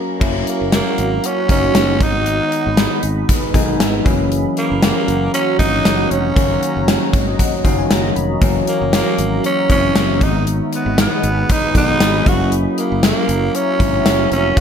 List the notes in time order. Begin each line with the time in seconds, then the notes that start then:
Already playing: A#5
0.20 F#1 F#3 A#3 C#4 E4 F#4 C#5 F#5 A#5, kick, crash
0.47 A#3, closed hi-hat
0.61 F#1
0.72 A#3, snare, closed hi-hat
0.98 G#1, closed hi-hat
1.24 C#4, closed hi-hat
1.49 F#1 F#3 A#3 C#4 D#4, kick, closed hi-hat
1.75 F#1, snare, closed hi-hat
2.00 G#1 D#3 G#3 B3 D#4 G#4 B4 D#5 B5, kick, closed hi-hat
2.26 closed hi-hat
2.52 closed hi-hat
2.66 G#1
2.77 snare, closed hi-hat
3.03 G#1, closed hi-hat
3.29 kick, closed hi-hat
3.53 B1 D#3 G#3 B3 D#4 G#5, kick, closed hi-hat
3.80 G#1 E5, snare, closed hi-hat
4.05 F#1 E3 F#3 A#3 C#4 F#4 C#5 F#5 A#5, kick, closed hi-hat
4.32 closed hi-hat
4.57 A#3, closed hi-hat
4.71 F#1
4.82 A#3, snare, closed hi-hat
5.08 F#1, closed hi-hat
5.34 C#4, closed hi-hat
5.59 G#1 E3 F#3 A#3 C#4 D#4, kick, closed hi-hat
5.85 F#1, snare, closed hi-hat
6.11 F1 C#4, closed hi-hat
6.35 F#1 D#3 F#3 A#3 C#4 D#5, kick, closed hi-hat
6.63 closed hi-hat
6.76 F#1
6.88 snare, closed hi-hat
7.13 G#1 C#5, kick, closed hi-hat
7.28 D#5
7.39 F#5, kick, closed hi-hat
7.64 F#1 D#3 F#3 A#3 C#4, kick, closed hi-hat
7.79 G#5
7.90 F#1 A#5, snare, closed hi-hat
8.16 F1 B5, closed hi-hat
8.41 F#1 E3 F#3 A3 C#4 E5, kick, closed hi-hat
8.48 A#3
8.67 A#3, closed hi-hat
8.81 F#1
8.93 A#3, snare, closed hi-hat
9.18 G#1, closed hi-hat
9.44 C#4, closed hi-hat
9.69 F#1 E3 F#3 A#3 C4 C#4, kick, closed hi-hat
9.76 C#4
9.95 F#1, snare, closed hi-hat
10.21 G#1 D#3 G#3 B3 D#4 G#4 B4 D#5 B5, kick, closed hi-hat
10.47 closed hi-hat
10.73 B3, closed hi-hat
10.86 G#1
10.98 B3, snare, closed hi-hat
11.23 G#1, closed hi-hat
11.49 D#4, kick, closed hi-hat
11.74 B1 D#3 G#3 B3 D#4 F#4, kick, closed hi-hat
12.00 G#1, snare, closed hi-hat
12.25 F#1 F#3 A#3 C#4 E4 F#4 C#5 E5 A#5, kick, closed hi-hat
12.52 closed hi-hat
12.78 A#3, closed hi-hat
12.92 F#1
13.03 A#3, snare, closed hi-hat
13.29 F#1, closed hi-hat
13.55 C#4, closed hi-hat
13.79 G#1 F#3 A#3 C#4 E4, kick, closed hi-hat
14.06 F#1, snare, closed hi-hat
14.31 F1 C#4, closed hi-hat
14.56 F#1 F#3 A#3 C#4 D#4, kick, closed hi-hat